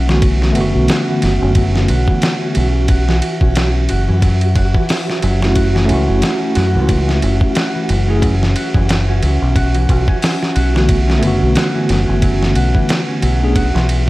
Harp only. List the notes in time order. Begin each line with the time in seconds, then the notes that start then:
Already playing: F#3 C#4 F#4
0.08 E3
0.42 C#4
0.56 F#3
0.89 F#4
1.08 E3
1.41 C#4
1.56 F#3
1.89 F#4
2.08 E3
2.42 C#4
2.56 F#3
2.89 F#4
3.08 E3
3.41 C#4
3.56 F#3
3.90 F#4
4.08 E3
4.23 F#3
4.55 F#4
4.75 E3
5.07 C#4
5.22 F#3
5.56 F#4
5.75 E3
6.08 C#4
6.22 F#3
6.55 F#4
6.74 E3
7.08 C#4
7.23 F#3
7.55 F#4
7.75 E3
8.08 C#4
8.23 F#3
8.56 F#4
8.75 E3
9.08 C#4
9.22 F#3
9.56 F#4
9.75 E3
10.08 C#4
10.22 F#3
10.55 F#4
10.74 E3
11.07 C#4
11.22 F#3
11.55 F#4
11.74 E3
12.07 C#4
12.22 F#3
12.55 F#4
12.74 E3
13.08 C#4
13.22 F#3
13.55 F#4
13.74 E3